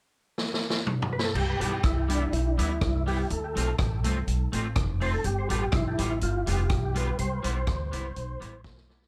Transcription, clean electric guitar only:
1.60 G3 B3 E4
2.08 G3 B3 E4
2.58 G3 B3 E4
3.06 G3 B3 E4
3.55 A3 C4 F4
4.04 A3 C4 F4
4.52 A3 C4 F4
5.00 A3 C4 F4
5.49 G3 B3 F4
5.98 G3 B3 F4
6.46 G3 B3 F4
6.95 G3 B3 F4
7.43 G3 B3 E4
7.92 G3 B3 E4
8.40 G3 B3 E4
8.89 G3 B3 E4

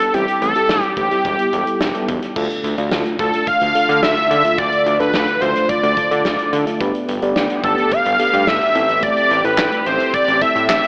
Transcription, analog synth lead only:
Already playing: A4
0.14 G4
0.42 A4
0.82 G4
0.97 G4
3.20 A4
3.47 F5
4.03 E5
4.58 D5
5.00 B4
5.41 C5
5.69 D5
7.64 A4
7.92 F5
8.48 E5
9.03 D5
9.45 B4
9.86 C5
10.14 D5
10.42 E5
10.69 E5

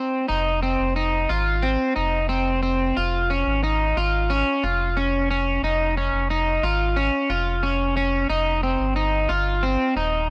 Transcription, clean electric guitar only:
Already playing: C4
0.28 D#4
0.63 C4
0.96 D#4
1.29 F4
1.62 C4
1.96 D#4
2.29 C4
2.63 C4
2.97 F4
3.30 C#4
3.63 D#4
3.97 F4
4.30 C#4
4.64 F4
4.97 C#4
5.31 C#4
5.64 D#4
5.97 C#4
6.30 D#4
6.63 F4
6.96 C#4
7.30 F4
7.63 C#4
7.97 C#4
8.30 D#4
8.63 C4
8.96 D#4
9.29 F4
9.63 C4
9.97 D#4

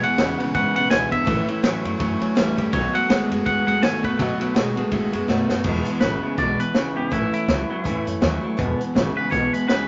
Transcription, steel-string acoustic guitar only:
0.02 E3 G#3 B3 E4
0.16 E2 B2 E3 G#3 B3 E4
0.37 E3 G#3 B3 E4
0.53 E3 G#3 B3 E4
0.74 E3 G#3 B3 E4
0.89 E2 B2 E3 G#3 B3 E4
1.09 E3 G#3 B3 E4
1.25 A2 E3 A3 C#4 E4
1.46 A3 C#4 E4
1.62 A2 E3 A3 C#4 E4
1.82 A3 C#4 E4
1.97 E3 A3 C#4 E4
2.19 A3 C#4 E4
2.35 A2 E3 A3 C#4 E4
2.57 A3 C#4 E4
2.73 B2 D#3 A3 B3 F#4
2.93 A3 B3 F#4
3.09 B2 D#3 A3 B3 F#4
3.31 A3 B3 F#4
3.46 D#3 A3 B3 F#4
3.67 A3 B3 F#4
3.82 B2 D#3 A3 B3 F#4
4.03 A3 B3 F#4
4.19 B2 D#3 A3 B3 F#4
4.40 A3 B3 F#4
4.54 B2 D#3 A3 B3 F#4
4.76 A3 B3 F#4
4.91 D#3 A3 B3 F#4
5.12 A3 B3 F#4
5.28 B2 D#3 A3 B3 F#4
5.49 A3 B3 F#4
5.65 E2 B2 E3 G#3 B3 E4
5.86 E3 G#3 B3 E4
6.01 E3 G#3 B3 E4
6.22 E3 G#3 B3 E4
6.37 E2 B2 E3 G#3 B3 E4
6.58 E3 G#3 B3 E4
6.73 E3 G#3 B3 E4
6.94 E3 G#3 B3 E4
7.10 A2 E3 A3 C#4 E4
7.32 A3 C#4 E4
7.47 E3 A3 C#4 E4
7.68 A3 C#4 E4
7.84 A2 E3 A3 C#4 E4
8.05 A3 C#4 E4
8.21 E3 A3 C#4 E4
8.41 A3 C#4 E4
8.57 E2 B2 E3 G#3 B3 E4
8.77 E3 G#3 B3 E4
8.93 E3 G#3 B3 E4
9.14 E3 G#3 B3 E4
9.30 E2 B2 E3 G#3 B3 E4
9.51 E3 G#3 B3 E4
9.67 E3 G#3 B3 E4

